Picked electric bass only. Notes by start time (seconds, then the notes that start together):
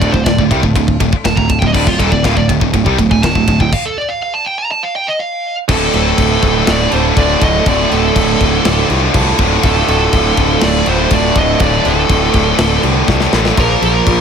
0.02 D1
0.14 D1
0.26 D1
0.39 D1
0.51 C2
0.63 D1
0.75 D1
1.00 D1
1.12 muted picked electric bass stroke
1.25 D1
1.37 D1
1.62 D1
1.74 D1
1.87 D1
2.00 D#1
2.12 D1
2.24 D1
2.37 D1
2.49 D1
2.62 D1
2.74 D1
2.86 C2
2.98 D1
3.11 D1
3.24 D1
3.35 D1
3.48 D1
3.61 D1
5.69 D1
5.94 D1
6.18 D1
6.43 D1
6.68 D1
6.93 D1
7.17 D1
7.41 D1
7.67 D1
7.92 D1
8.16 D1
8.41 D1
8.66 D1
8.90 C2
9.14 C2
9.39 D1
9.63 D1
9.89 D1
10.13 D1
10.38 D1
10.63 D1
10.87 D1
11.11 D1
11.36 D1
11.60 D1
11.86 D1
12.10 D1
12.34 D1
12.59 D1
12.84 C2
13.08 C2
13.33 A1
13.58 A#1
13.82 A#1
14.07 A#1